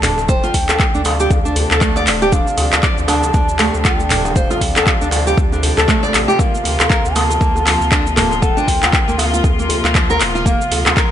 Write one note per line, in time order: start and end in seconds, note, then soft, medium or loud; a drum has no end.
0.00 0.40 D1 medium
0.00 11.11 C3 medium
0.00 11.11 F3 medium
0.00 2.28 A3 medium
0.00 6.35 D4 medium
0.00 0.17 D4 medium
0.00 0.27 A5 loud
0.00 clap loud
0.00 mid tom medium
0.00 open hi-hat medium
0.00 sub drop medium
0.00 djembe tone medium
0.00 djembe bass medium
0.00 shaker loud
0.18 djembe slap medium
0.18 shaker medium
0.28 0.43 C5 medium
0.28 1.08 G5 loud
0.28 kick loud
0.28 shaker medium
0.44 0.54 F4 loud
0.44 djembe tone medium
0.44 shaker medium
0.54 0.67 D2 loud
0.54 kick medium
0.54 open hi-hat medium
0.54 shaker medium
0.69 0.79 A4 medium
0.69 clap loud
0.69 djembe slap loud
0.69 djembe tone loud
0.69 djembe bass loud
0.69 shaker loud
0.80 kick loud
0.80 clap medium
0.80 shaker medium
0.94 1.28 D2 medium
0.94 1.00 D4 medium
0.94 shaker medium
1.05 1.56 F5 medium
1.05 open hi-hat medium
1.05 djembe slap loud
1.05 djembe tone medium
1.05 shaker loud
1.20 1.30 G4 loud
1.20 shaker loud
1.30 1.67 D2 medium
1.30 kick loud
1.30 djembe tone loud
1.30 shaker medium
1.45 1.55 D4 medium
1.45 shaker medium
1.56 open hi-hat medium
1.56 djembe bass medium
1.56 shaker medium
1.71 2.08 D2 medium
1.71 1.81 A4 medium
1.71 clap medium
1.71 djembe tone medium
1.71 shaker medium
1.81 1.96 A3 medium
1.81 kick loud
1.81 clap medium
1.81 shaker loud
1.96 2.06 D5 loud
1.96 djembe slap medium
1.96 djembe tone loud
1.96 shaker medium
2.07 2.43 D1 loud
2.07 clap loud
2.07 open hi-hat medium
2.07 shaker medium
2.22 2.32 G4 loud
2.22 shaker medium
2.26 2.34 G5 medium
2.32 6.35 G3 medium
2.32 2.46 D4 medium
2.32 2.83 F5 loud
2.32 kick loud
2.32 djembe tone medium
2.32 shaker medium
2.47 shaker medium
2.57 2.70 D2 loud
2.57 open hi-hat medium
2.57 djembe tone loud
2.57 shaker medium
2.73 clap loud
2.73 djembe slap loud
2.73 djembe bass loud
2.73 shaker loud
2.83 2.97 D5 medium
2.83 kick loud
2.83 clap medium
2.83 shaker medium
2.98 3.31 D2 medium
2.98 djembe tone medium
2.98 shaker medium
3.08 3.22 D4 medium
3.08 3.87 A5 loud
3.08 open hi-hat medium
3.08 djembe slap loud
3.08 shaker loud
3.23 djembe tone loud
3.23 shaker medium
3.34 3.70 D2 medium
3.34 3.47 D4 medium
3.34 kick loud
3.34 shaker medium
3.49 shaker medium
3.59 3.73 A3 medium
3.59 clap medium
3.59 open hi-hat medium
3.59 djembe slap loud
3.59 djembe tone medium
3.59 shaker medium
3.74 4.12 D2 medium
3.74 shaker medium
3.85 3.99 F4 loud
3.85 3.96 F#5 loud
3.85 kick loud
3.85 clap medium
3.85 djembe tone loud
3.85 shaker medium
3.96 4.38 G5 loud
3.96 shaker medium
4.10 4.47 D1 loud
4.10 4.24 D4 medium
4.10 clap loud
4.10 mid tom medium
4.10 open hi-hat medium
4.10 djembe bass medium
4.10 shaker loud
4.25 djembe slap medium
4.25 djembe tone medium
4.25 shaker medium
4.36 4.50 C5 medium
4.36 4.81 F5 loud
4.36 kick loud
4.36 shaker medium
4.51 4.61 F4 loud
4.51 djembe tone loud
4.51 shaker medium
4.61 4.74 D2 loud
4.61 kick medium
4.61 open hi-hat medium
4.61 shaker medium
4.76 4.86 A4 medium
4.76 clap medium
4.76 djembe slap loud
4.76 djembe bass medium
4.76 shaker loud
4.81 4.89 G5 medium
4.87 5.38 F5 medium
4.87 kick loud
4.87 clap medium
4.87 djembe tone medium
4.87 shaker medium
5.01 5.34 D2 medium
5.01 5.07 D4 medium
5.01 shaker medium
5.11 open hi-hat medium
5.11 djembe slap loud
5.11 djembe tone medium
5.11 shaker loud
5.27 5.37 G4 loud
5.27 shaker medium
5.37 5.74 D2 loud
5.37 kick loud
5.37 shaker medium
5.52 5.62 D4 medium
5.52 djembe tone medium
5.52 shaker medium
5.63 open hi-hat medium
5.63 djembe bass medium
5.63 shaker medium
5.77 5.86 D2 loud
5.77 5.88 A4 medium
5.77 clap medium
5.77 djembe tone loud
5.77 shaker medium
5.88 6.02 A3 medium
5.88 kick loud
5.88 clap medium
5.88 shaker medium
6.03 6.12 D5 loud
6.03 djembe slap medium
6.03 shaker medium
6.14 6.26 A1 medium
6.14 clap medium
6.14 open hi-hat medium
6.14 djembe tone medium
6.14 shaker loud
6.28 6.38 G4 loud
6.28 shaker medium
6.39 6.52 A#3 medium
6.39 11.11 A#3 medium
6.39 11.11 F4 medium
6.39 7.16 F5 loud
6.39 kick loud
6.39 shaker medium
6.55 shaker medium
6.64 6.77 D2 loud
6.64 open hi-hat medium
6.64 djembe tone medium
6.64 shaker medium
6.80 clap medium
6.80 djembe slap loud
6.80 djembe bass medium
6.80 shaker loud
6.89 7.03 A#4 medium
6.89 kick loud
6.89 clap loud
6.89 djembe tone loud
6.89 shaker medium
7.05 7.38 D2 medium
7.05 shaker medium
7.15 7.29 A#3 medium
7.15 8.16 A5 loud
7.15 open hi-hat medium
7.15 djembe slap loud
7.15 shaker medium
7.30 djembe tone medium
7.30 shaker medium
7.41 7.77 D2 medium
7.41 7.54 A#3 medium
7.41 kick loud
7.41 shaker medium
7.56 djembe tone loud
7.56 shaker medium
7.65 7.80 F3 medium
7.65 clap medium
7.65 open hi-hat medium
7.65 djembe slap loud
7.65 shaker medium
7.81 8.18 D2 medium
7.81 shaker medium
7.91 8.06 D4 loud
7.91 kick loud
7.91 clap loud
7.91 djembe tone medium
7.91 shaker medium
8.07 shaker medium
8.16 8.53 D1 medium
8.16 8.30 A#3 medium
8.16 8.37 A5 loud
8.16 clap medium
8.16 mid tom loud
8.16 open hi-hat medium
8.16 djembe tone loud
8.16 djembe bass medium
8.16 shaker medium
8.31 djembe slap medium
8.31 shaker medium
8.37 8.43 A5 medium
8.42 8.56 A4 medium
8.42 8.57 F#5 loud
8.42 kick loud
8.42 shaker medium
8.57 8.67 D4 loud
8.57 9.20 G5 loud
8.57 djembe tone medium
8.57 shaker medium
8.68 8.80 D2 loud
8.68 kick medium
8.68 open hi-hat medium
8.68 shaker medium
8.83 8.93 F4 medium
8.83 clap medium
8.83 djembe slap loud
8.83 djembe tone medium
8.83 djembe bass medium
8.83 shaker medium
8.93 kick loud
8.93 clap loud
8.93 shaker medium
9.08 9.41 D2 medium
9.08 9.14 A#3 medium
9.08 shaker medium
9.18 9.69 F5 medium
9.18 open hi-hat medium
9.18 djembe slap medium
9.18 djembe tone medium
9.18 shaker medium
9.34 9.44 F4 loud
9.34 shaker medium
9.44 9.80 D2 medium
9.44 kick loud
9.44 djembe tone medium
9.44 shaker medium
9.59 9.69 A#3 medium
9.59 shaker medium
9.69 open hi-hat medium
9.69 djembe bass loud
9.69 shaker medium
9.84 10.22 D2 medium
9.84 9.95 F4 medium
9.84 clap medium
9.84 djembe tone medium
9.84 shaker medium
9.95 10.09 F3 medium
9.95 kick loud
9.95 clap loud
9.95 shaker medium
10.10 10.20 A#4 loud
10.10 djembe slap medium
10.10 djembe tone medium
10.10 shaker medium
10.20 10.57 D1 medium
10.20 clap medium
10.20 open hi-hat medium
10.20 shaker medium
10.35 10.45 F4 loud
10.35 shaker medium
10.46 10.59 A#3 medium
10.46 10.93 F5 loud
10.46 kick loud
10.46 djembe tone medium
10.46 shaker medium
10.61 shaker medium
10.71 10.84 D2 loud
10.71 open hi-hat medium
10.71 djembe tone medium
10.71 shaker medium
10.85 clap medium
10.85 djembe slap loud
10.85 djembe bass loud
10.85 shaker medium
10.96 11.10 A#4 medium
10.96 kick loud
10.96 clap loud
10.96 shaker soft